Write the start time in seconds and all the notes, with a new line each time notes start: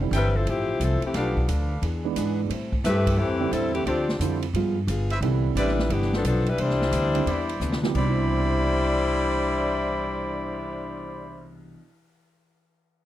Already playing: F1
0.01 D3 G3 C4 E4
0.11 G1 F2 E3 A3 C4 A4 C5 E5 G5, hi-hat pedal, ride
0.16 G3 C4 E4 B4
0.36 F3 C4 E4 A4
0.46 A1 F2 E3 F3 A3 C4 E4 G4, ride
0.80 C2 F2 E3 F3 A3 C4 E4 A4, hi-hat pedal, ride
1.02 E3 A3 C4 G4, ride
1.14 B1 B2 F3 A3 B3 D4 G4 A4 B4 D5 F5, snare, ride
1.37 kick
1.48 D2 B2 F3 A3 D4, hi-hat pedal, ride
1.82 E2 E3 B3 D4 G#4, ride
2.04 E3 G#3 B3 D4
2.16 G#2 E3 B3 D4 G#4, hi-hat pedal, ride
2.50 A2 G3 C4 E4, ride
2.72 kick
2.84 G2 A2 G3 A3 C4 E4 G4 A4 B4 E5, snare, hi-hat pedal, ride
3.07 kick, ride
3.17 F2 A2 E3 G3 A3 C4 E4 G4
3.40 D3 G3 C4 E4
3.51 E2 A2 G3 C4 E4 A4, hi-hat pedal, ride
3.74 E3 A3 C4 G4, ride
3.85 D2 D3 F3 A3 C4 D4 F4 G4 A4 C5 D5, ride
4.09 snare
4.19 F2 D3 G3 A3 C4 E4 F4, hi-hat pedal, ride
4.42 ride
4.53 G2 F3 G3 G#3 B3 F4 G#4, ride
4.87 G1 G3 B3 F4 G#4, hi-hat pedal, ride
5.10 E4 B4 C5 E5, ride
5.21 C2 C3 D3 E3 G3 B3 C4 D4 E4, ride
5.55 A1 C3 E3 G3 B3 D4 E4 B4 C5 D5, hi-hat pedal, ride
5.68 snare
5.79 snare
5.90 G1 C3 E3 B3 D4 G4, ride
6.02 snare
6.13 F3 B3 D4 A4, snare
6.23 B1 C3 E3 F3 B3 D4 A4, hi-hat pedal, ride
6.46 G3 D4 E4 B4, ride
6.58 C2 C3 E3 G3 B3 D4 E4 C5, ride
6.70 snare
6.82 snare
6.91 D2 C3 E3 B3 D4, hi-hat pedal, ride
7.14 D3 G3 C4 E4, ride
7.26 E2 C3 E3 B3 D4 E4 C5 D5 B5, ride
7.49 ride
7.60 D2 C3 E3 B3 D4, hi-hat pedal
7.72 snare
7.83 C3 F3 B3 E4 G4, snare
7.89 C3 G3
7.95 C2 B2 E3 G3 D4 E4 C5 D5 B5, kick, crash
8.01 D4
8.08 E4
8.17 cymbal swell